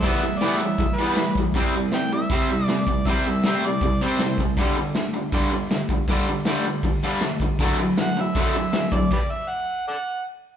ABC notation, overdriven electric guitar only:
X:1
M:4/4
L:1/8
Q:1/4=159
K:G
V:1 name="Overdriven electric guitar" clef=bass
[E,G,B,] [E,G,] [E,G,B,] [E,G,] [E,G,] [E,G,B,] [E,G,] [E,G,] | [C,G,C] [C,G,] [C,G,] [C,G,] [C,G,C] [C,G,] [C,G,] [C,G,] | [C,G,C] [C,G,] [C,G,C] [C,G,] [C,G,] [C,G,C] [C,G,] [C,G,] | [G,,D,G,] [G,,D,] [G,,D,] [G,,D,] [G,,D,G,] [G,,D,] [G,,D,] [G,,D,] |
[G,,D,G,] [G,,D,] [G,,D,G,] [G,,D,] [G,,D,] [G,,D,G,] [G,,D,] [G,,D,] | [D,F,A,] [D,F,] [D,F,] [D,F,] [D,F,A,] [D,F,] [D,F,] [D,F,] | z8 |]